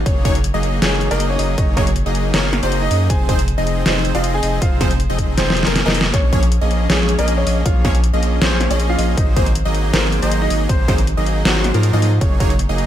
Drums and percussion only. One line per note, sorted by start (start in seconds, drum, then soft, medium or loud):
0.06 kick loud
0.06 closed hi-hat medium
0.25 kick loud
0.25 closed hi-hat medium
0.35 closed hi-hat medium
0.44 closed hi-hat medium
0.63 closed hi-hat medium
0.82 snare loud
0.82 closed hi-hat medium
1.01 closed hi-hat medium
1.11 closed hi-hat medium
1.20 closed hi-hat medium
1.39 open hi-hat medium
1.58 kick loud
1.58 closed hi-hat medium
1.77 kick loud
1.77 snare medium
1.77 closed hi-hat medium
1.87 closed hi-hat medium
1.96 closed hi-hat medium
2.15 closed hi-hat medium
2.34 snare loud
2.34 closed hi-hat medium
2.53 snare medium
2.53 closed hi-hat medium
2.63 closed hi-hat medium
2.72 closed hi-hat medium
2.91 open hi-hat medium
3.10 kick loud
3.10 closed hi-hat medium
3.29 kick loud
3.29 closed hi-hat medium
3.39 closed hi-hat medium
3.48 closed hi-hat medium
3.67 closed hi-hat medium
3.86 snare loud
3.86 closed hi-hat medium
4.05 closed hi-hat medium
4.15 closed hi-hat medium
4.24 closed hi-hat medium
4.43 open hi-hat medium
4.62 kick loud
4.62 closed hi-hat medium
4.81 kick loud
4.81 snare medium
4.81 closed hi-hat medium
4.91 closed hi-hat medium
5.00 closed hi-hat medium
5.19 kick medium
5.19 closed hi-hat medium
5.38 snare medium
5.38 closed hi-hat medium
5.50 snare medium
5.57 closed hi-hat medium
5.63 snare medium
5.63 closed hi-hat medium
5.76 snare medium
5.76 closed hi-hat medium
5.88 snare loud
5.95 open hi-hat medium
6.01 snare loud
6.14 kick loud
6.14 closed hi-hat medium
6.33 kick loud
6.33 closed hi-hat medium
6.43 closed hi-hat medium
6.52 closed hi-hat medium
6.71 closed hi-hat medium
6.90 snare loud
6.90 closed hi-hat medium
7.09 closed hi-hat medium
7.19 closed hi-hat medium
7.28 closed hi-hat medium
7.47 open hi-hat loud
7.66 kick loud
7.66 closed hi-hat medium
7.85 kick loud
7.85 snare medium
7.85 closed hi-hat medium
7.95 closed hi-hat medium
8.04 closed hi-hat medium
8.23 closed hi-hat medium
8.42 snare loud
8.42 closed hi-hat medium
8.61 snare medium
8.61 closed hi-hat medium
8.71 closed hi-hat medium
8.80 closed hi-hat medium
8.99 open hi-hat medium
9.18 kick loud
9.18 closed hi-hat medium
9.36 kick loud
9.36 closed hi-hat medium
9.46 closed hi-hat medium
9.55 closed hi-hat medium
9.74 closed hi-hat medium
9.94 snare loud
9.94 closed hi-hat medium
10.12 closed hi-hat medium
10.23 closed hi-hat medium
10.31 closed hi-hat medium
10.50 open hi-hat medium
10.69 kick loud
10.69 closed hi-hat medium
10.88 kick loud
10.88 snare medium
10.88 closed hi-hat medium
10.98 closed hi-hat medium
11.07 closed hi-hat medium
11.26 closed hi-hat medium
11.45 snare loud
11.45 closed hi-hat medium
11.64 snare medium
11.64 closed hi-hat medium
11.74 closed hi-hat medium
11.83 closed hi-hat medium
12.02 open hi-hat medium
12.21 kick loud
12.21 closed hi-hat medium
12.40 kick loud
12.40 closed hi-hat medium
12.50 closed hi-hat medium
12.59 closed hi-hat medium
12.78 closed hi-hat medium